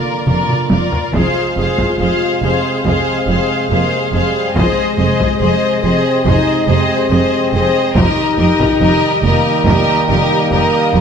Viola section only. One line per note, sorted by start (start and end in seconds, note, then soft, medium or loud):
0.00 0.27 F4 soft
0.28 0.70 F4 soft
0.71 1.13 F4 soft
1.15 1.56 G#4 soft
1.57 1.99 G#4 soft
2.00 2.42 G#4 soft
2.44 2.84 G#4 soft
2.85 3.27 G#4 soft
3.28 3.70 G#4 soft
3.71 4.13 G#4 soft
4.14 4.55 G#4 soft
4.56 4.97 G#4 soft
4.98 5.39 G#4 soft
5.41 5.81 G#4 soft
5.83 6.25 G#4 soft
6.26 6.67 G#4 soft
6.68 7.10 G#4 soft
7.12 7.53 G#4 soft
7.54 7.96 G#4 soft
7.97 8.38 G4 medium
8.40 8.81 G4 medium
8.82 9.24 G4 medium
9.25 9.66 G4 medium
9.67 10.09 G4 medium
10.11 10.52 G4 medium
10.53 10.94 G4 medium
10.95 11.01 G4 medium